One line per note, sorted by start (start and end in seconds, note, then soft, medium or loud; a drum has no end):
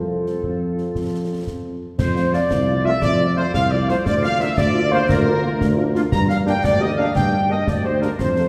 0.00 0.37 F2 soft
0.00 1.78 F3 soft
0.00 1.78 C4 soft
0.00 1.73 F4 soft
0.00 1.78 F4 soft
0.00 1.82 F4 soft
0.00 1.82 A4 soft
0.00 1.78 C5 soft
0.26 snare soft
0.43 0.89 F2 soft
0.43 concert bass drum medium
0.78 snare soft
0.95 1.41 F2 soft
0.95 concert bass drum medium
0.95 snare soft
1.47 1.85 F2 soft
1.47 concert bass drum soft
1.47 snare soft
1.99 2.42 F2 medium
1.99 2.31 C5 medium
1.99 2.31 C5 loud
1.99 concert bass drum medium
1.99 snare medium
1.99 crash medium
2.16 2.22 A3 medium
2.16 2.22 C4 medium
2.16 2.22 F4 medium
2.16 snare medium
2.33 2.39 A3 medium
2.33 2.39 C4 medium
2.33 2.39 F4 medium
2.33 2.81 D5 loud
2.33 2.85 D5 medium
2.33 2.85 D5 loud
2.33 snare medium
2.50 2.93 C2 medium
2.50 concert bass drum medium
2.50 snare medium
2.67 2.74 A3 medium
2.67 2.74 C4 medium
2.67 2.73 F4 medium
2.85 2.91 A3 medium
2.85 2.91 C4 medium
2.85 2.91 F4 medium
2.85 3.01 E5 loud
2.85 3.02 E5 medium
3.02 3.45 F2 medium
3.02 3.34 D5 medium
3.02 3.34 D5 loud
3.02 concert bass drum medium
3.02 snare medium
3.19 3.26 A3 medium
3.19 3.26 C4 medium
3.19 3.26 F4 medium
3.36 3.43 A3 medium
3.36 3.43 C4 medium
3.36 3.42 F4 medium
3.36 3.52 C5 loud
3.36 3.42 C5 medium
3.36 3.45 C5 medium
3.53 3.97 C2 medium
3.53 3.70 F5 loud
3.53 3.62 F5 loud
3.53 concert bass drum medium
3.53 snare medium
3.71 3.77 A3 medium
3.71 3.77 C4 medium
3.71 3.77 F4 medium
3.71 3.88 D5 loud
3.71 3.78 D5 loud
3.71 3.80 D5 medium
3.88 3.94 A3 medium
3.88 3.95 A3 medium
3.88 3.95 C4 medium
3.88 3.95 F4 medium
3.88 4.06 C5 loud
3.88 4.05 C5 medium
3.88 snare medium
4.06 4.49 D2 medium
4.06 4.23 D5 loud
4.06 4.22 D5 loud
4.06 4.14 D5 loud
4.06 concert bass drum medium
4.06 snare medium
4.06 crash soft
4.22 4.29 A#3 medium
4.22 4.29 D4 medium
4.22 4.29 F4 medium
4.22 4.40 F5 loud
4.22 4.31 F5 loud
4.22 4.39 F5 loud
4.22 snare medium
4.40 4.46 A#3 medium
4.40 4.46 D4 medium
4.40 4.46 F4 medium
4.40 4.57 E5 loud
4.40 4.48 E5 loud
4.40 4.58 E5 loud
4.40 snare medium
4.58 5.01 D2 loud
4.58 4.92 D5 loud
4.58 4.90 D5 loud
4.58 concert bass drum medium
4.58 snare medium
4.75 4.81 A#3 medium
4.75 4.81 D4 medium
4.75 4.81 F4 medium
4.91 4.97 A#3 medium
4.91 4.98 A#3 medium
4.91 4.98 D4 medium
4.91 4.97 F4 loud
4.91 4.98 F4 medium
4.91 5.09 C5 loud
4.91 5.08 C5 loud
5.09 5.52 D2 loud
5.09 5.95 A#4 loud
5.09 5.91 A#4 loud
5.09 concert bass drum medium
5.09 snare medium
5.26 5.32 A#3 medium
5.26 5.32 D4 medium
5.26 5.32 F4 medium
5.43 5.49 A#3 medium
5.43 5.50 A#3 medium
5.43 5.49 D4 medium
5.43 5.49 F4 medium
5.43 5.50 F4 medium
5.60 6.04 D2 loud
5.60 concert bass drum medium
5.60 snare medium
5.77 5.83 A#3 medium
5.77 5.83 D4 medium
5.77 5.84 F4 medium
5.95 6.01 A#3 medium
5.95 6.02 A#3 loud
5.95 6.01 D4 medium
5.95 6.01 F4 medium
5.95 6.02 F4 medium
5.95 snare medium
6.12 6.55 G2 medium
6.12 6.20 A#5 loud
6.12 6.28 A#5 loud
6.12 6.19 A#5 loud
6.12 concert bass drum medium
6.12 snare medium
6.12 crash soft
6.29 6.35 A#3 medium
6.29 6.35 D4 medium
6.29 6.35 G4 medium
6.29 6.37 F5 loud
6.29 6.36 F5 loud
6.29 snare medium
6.46 6.53 A#3 medium
6.46 6.53 D4 medium
6.46 6.53 G4 medium
6.46 6.53 G5 medium
6.46 6.63 G5 loud
6.46 6.55 G5 medium
6.46 snare medium
6.63 7.07 D2 medium
6.63 6.80 D5 loud
6.63 6.72 D5 loud
6.63 6.81 D5 loud
6.63 concert bass drum medium
6.63 snare medium
6.80 6.87 A#3 medium
6.80 6.87 D4 medium
6.80 6.87 G4 medium
6.80 6.98 D#5 loud
6.80 6.89 D#5 medium
6.80 6.98 D#5 loud
6.97 7.04 A#3 medium
6.97 7.04 D4 medium
6.97 7.04 G4 medium
6.97 7.04 F5 medium
6.97 7.14 F5 loud
6.97 7.15 F5 loud
7.15 7.58 G2 medium
7.15 7.47 G5 loud
7.15 7.48 G5 loud
7.15 concert bass drum medium
7.15 snare medium
7.33 7.39 A#3 medium
7.33 7.39 D4 medium
7.33 7.39 G4 medium
7.49 7.56 A#3 medium
7.49 7.55 D4 medium
7.49 7.56 D4 medium
7.49 7.56 G4 medium
7.49 7.66 D#5 medium
7.49 7.66 D#5 loud
7.49 7.68 D#5 medium
7.67 8.10 D2 medium
7.67 7.84 D5 medium
7.67 7.83 D5 medium
7.67 7.85 D5 medium
7.67 concert bass drum medium
7.67 snare medium
7.84 7.91 A#3 medium
7.84 7.91 D4 medium
7.84 7.91 G4 medium
7.84 8.00 C5 medium
7.84 8.01 C5 medium
7.84 8.02 C5 loud
8.01 8.07 A#3 medium
8.01 8.08 A#3 medium
8.01 8.07 D4 medium
8.01 8.08 D4 medium
8.01 8.08 G4 medium
8.01 8.17 A#4 medium
8.01 8.18 A#4 medium
8.01 8.10 A#4 medium
8.01 snare medium
8.19 8.48 F2 medium
8.19 8.48 C5 medium
8.19 8.48 C5 loud
8.19 concert bass drum medium
8.19 snare medium
8.19 crash soft
8.36 8.42 F3 medium
8.36 8.42 F4 medium
8.36 8.42 A4 medium
8.36 snare medium